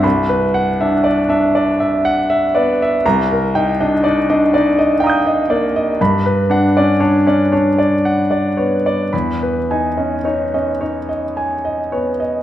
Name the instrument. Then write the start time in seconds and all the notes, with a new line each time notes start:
grand piano
0.03 C2 B5
0.29 B4
0.54 F#5
0.81 D4 E5
1.04 D5
1.29 D4 E5
1.55 D5
1.80 E5
2.05 F#5
2.30 E5
2.55 B3 D5
2.82 E5
3.06 C2 A#5
3.31 A#4
3.55 D#4 G5
3.80 D4 D#5
4.04 D#4 D5
4.29 D4 D#5
4.54 D#4 D5
4.79 D#5
5.00 F5 G5 A#5
5.07 D#6 G6
5.27 D#5
5.50 A#3 D5
5.76 D#5
6.01 G2 B5
6.26 B4
6.50 D4 F#5
6.77 C#4 D5
7.00 D4 C#5
7.27 C#4 D5
7.52 D4 C#5
7.78 D5
8.05 F#5
8.31 D5
8.57 B3 C#5
8.86 D5
9.13 E2 B5
9.43 B4
9.71 D#4 G#5
9.97 C#4 D#5
10.24 D#4 C#5
10.54 C#4 D#5
10.81 D#4 C#5
11.09 D#5
11.37 G#5
11.65 D#5
11.92 B3 C#5
12.20 D#5